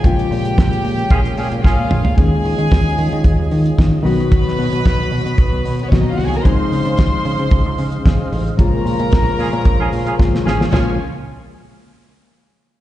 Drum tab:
HH |xxox-xoxxxox----|x-oxx-oxx-oxx-ox|x-oxx-oxx-oxx-ox|x-oxx-oxx-oxx-ox|
SD |----o-------o---|----o-------o---|-o--o-------o---|----o-------o---|
T2 |--------------o-|----------------|----------------|----------------|
FT |---------------o|----------------|----------------|----------------|
BD |o---o---o---o---|o---o---o---o---|o---o---o---o---|o---o---o---o---|

HH |x-oxx-oxx-ox----|----------------|
SD |----o-------oooo|o---------------|
T2 |----------------|----------------|
FT |----------------|o---------------|
BD |o---o---o---o---|----------------|